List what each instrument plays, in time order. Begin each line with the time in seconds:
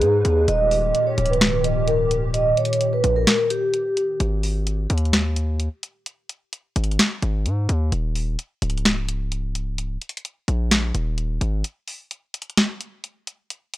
Already playing: analog synth pad G#3 D#4 B4, vibraphone G#4
0.01 808-style bass G#2, closed hi-hat
0.25 808-style bass D#2, closed hi-hat
0.48 808-style bass D#1, analog synth pad A#2 D#3 G4, vibraphone D#5, closed hi-hat
0.71 vibraphone D#5, open hi-hat
0.95 closed hi-hat
1.07 vibraphone C#5
1.18 808-style bass C#1, closed hi-hat
1.26 closed hi-hat
1.30 vibraphone B4, closed hi-hat
1.41 finger snap, snare, closed hi-hat
1.64 vibraphone D#5, closed hi-hat
1.88 vibraphone A#4, closed hi-hat
2.11 closed hi-hat
2.34 vibraphone D#5, closed hi-hat
2.57 vibraphone C#5, closed hi-hat, open hi-hat
2.65 closed hi-hat
2.73 closed hi-hat
2.81 closed hi-hat
2.93 vibraphone B4
3.04 808-style bass A#1, closed hi-hat
3.16 vibraphone A#4
3.27 finger snap, snare, closed hi-hat
3.50 vibraphone G4, closed hi-hat
3.74 closed hi-hat
3.97 closed hi-hat
4.20 808-style bass G#1, closed hi-hat
4.43 open hi-hat
4.67 closed hi-hat
4.90 808-style bass D#2, closed hi-hat
4.98 closed hi-hat
5.05 closed hi-hat
5.13 finger snap, snare, closed hi-hat
5.36 closed hi-hat
5.60 closed hi-hat
5.83 closed hi-hat
6.06 closed hi-hat
6.29 closed hi-hat
6.53 closed hi-hat
6.76 808-style bass G#1, closed hi-hat
6.84 closed hi-hat
6.91 closed hi-hat
6.99 finger snap, snare, closed hi-hat
7.22 808-style bass G#1, closed hi-hat
7.46 808-style bass G#2, closed hi-hat
7.69 808-style bass D#2, closed hi-hat
7.92 808-style bass D#1, closed hi-hat
8.15 open hi-hat
8.39 closed hi-hat
8.62 808-style bass C#1, closed hi-hat
8.70 closed hi-hat
8.78 closed hi-hat
8.85 finger snap, snare, closed hi-hat
9.09 closed hi-hat
9.32 closed hi-hat
9.55 closed hi-hat
9.78 closed hi-hat
10.01 closed hi-hat, open hi-hat
10.09 closed hi-hat
10.17 closed hi-hat
10.25 closed hi-hat
10.48 808-style bass A#1, closed hi-hat
10.71 finger snap, snare, closed hi-hat
10.95 808-style bass D#1, closed hi-hat
11.18 closed hi-hat
11.41 808-style bass G#1, closed hi-hat
11.64 closed hi-hat
11.88 open hi-hat
12.11 closed hi-hat
12.34 closed hi-hat
12.42 closed hi-hat
12.50 closed hi-hat
12.57 finger snap, snare, closed hi-hat
12.81 closed hi-hat
13.04 closed hi-hat
13.27 closed hi-hat
13.50 closed hi-hat
13.74 closed hi-hat